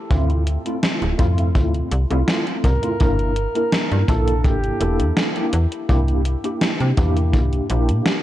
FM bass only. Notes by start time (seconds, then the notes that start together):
0.11 D2
1.02 D1
1.19 F2
1.55 D2
1.91 C2
2.11 C2
2.64 C2
3.00 G1
3.91 G2
4.08 A#1
4.44 G1
4.81 E1
5.00 E2
5.53 E2
5.89 C2
6.81 C3
6.98 E2
7.33 C2
7.70 A#1
7.89 A#2